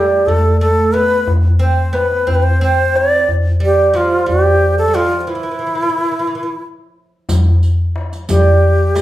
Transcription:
Already playing: oud G3, ney G4
0.11 darbuka ka
0.26 oud A3, ney A4, darbuka dum
0.60 oud A3, ney A4
0.93 oud B3, ney B4, darbuka tek
1.12 darbuka ka
1.27 darbuka dum
1.59 oud C4, ney C5, darbuka ka
1.93 oud B3, ney B4, darbuka tek
2.11 darbuka ka
2.27 oud C4, ney C5, darbuka dum
2.34 ney B4
2.43 ney C5
2.61 oud C4, ney C5
2.95 ney D5, darbuka tek
3.12 darbuka ka
3.28 darbuka dum
3.60 oud G3, darbuka ka
3.65 ney G4
3.94 oud F3, ney F4, darbuka tek
4.12 darbuka ka
4.26 oud G3, ney G4, darbuka dum
4.78 ney A4
4.88 oud G3
4.94 oud F3, ney F4, darbuka tek
5.13 darbuka ka
5.20 ney F4
5.27 oud E3, ney E4
5.35 oud E3
5.43 oud E3
5.51 oud E3
5.59 oud E3
5.67 oud E3
5.75 oud E3
5.82 oud E3
5.89 oud E3
5.98 oud E3
6.04 oud E3
6.12 oud E3
6.19 oud E3
6.27 oud E3
6.35 oud E3
6.43 oud E3
7.29 riq, darbuka dum
7.63 riq
7.96 darbuka tek
8.13 riq, darbuka ka
8.29 oud G3, ney G4, riq, darbuka dum
8.63 darbuka ka
8.95 oud A3, ney A4, riq, darbuka tek

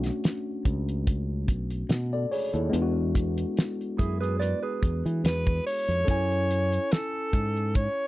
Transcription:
Already playing: tine electric piano A3 C#4 D4 F#4
0.04 snare, closed hi-hat
0.24 snare, closed hi-hat
0.65 fingered electric bass C#2, kick, closed hi-hat
0.89 closed hi-hat
1.07 kick, closed hi-hat
1.48 fingered electric bass B1, kick, closed hi-hat
1.70 closed hi-hat
1.89 fingered electric bass B2, snare, closed hi-hat
2.13 tine electric piano A4 D5
2.31 tine electric piano G#4 C#5, open hi-hat
2.54 fingered electric bass D#2, tine electric piano E4 A4, closed hi-hat
2.69 fingered electric bass E2, tine electric piano G#3 B3 D4, closed hi-hat
2.76 tine electric piano F4
2.82 tine electric piano F#4
3.15 kick, closed hi-hat
3.38 closed hi-hat
3.57 snare, closed hi-hat
3.81 closed hi-hat
3.98 fingered electric bass F#2, clean electric guitar E4 G#4, kick, closed hi-hat
4.21 clean electric guitar G#4 B4, closed hi-hat
4.40 clean electric guitar B4 D5, closed hi-hat
4.63 clean electric guitar G#4 B4
4.83 fingered electric bass E2, kick, closed hi-hat
5.06 fingered electric bass E3, closed hi-hat
5.24 fingered electric bass E2, alto saxophone B4, snare, closed hi-hat
5.47 kick, closed hi-hat
5.66 alto saxophone C#5, open hi-hat
5.88 fingered electric bass F2, closed hi-hat
6.05 fingered electric bass F#2, tine electric piano C#4 A4, kick, closed hi-hat
6.09 tine electric piano E4 G#5
6.32 closed hi-hat
6.51 closed hi-hat
6.72 closed hi-hat
6.92 alto saxophone A4, snare, closed hi-hat
7.33 fingered electric bass G#2, kick, closed hi-hat
7.56 closed hi-hat
7.75 alto saxophone C#5, kick, closed hi-hat

